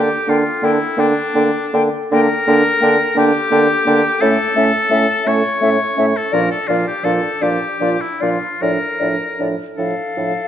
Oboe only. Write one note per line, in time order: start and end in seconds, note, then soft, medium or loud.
0.00 0.31 G4 medium
0.29 0.66 F4 medium
0.65 1.02 E4 medium
1.01 1.84 D4 medium
2.13 3.14 A#4 loud
3.18 4.23 G4 loud
4.21 5.29 A4 loud
5.27 6.18 C#5 loud
6.17 6.35 A4 medium
6.33 6.51 A#4 loud
6.51 6.69 A4 medium
6.68 6.86 F4 medium
6.87 7.06 G4 medium
7.04 7.44 A4 medium
7.42 8.03 G4 medium
8.01 8.23 E4 medium
8.22 8.64 F4 medium
8.62 9.49 A#4 medium
9.77 10.48 A4 medium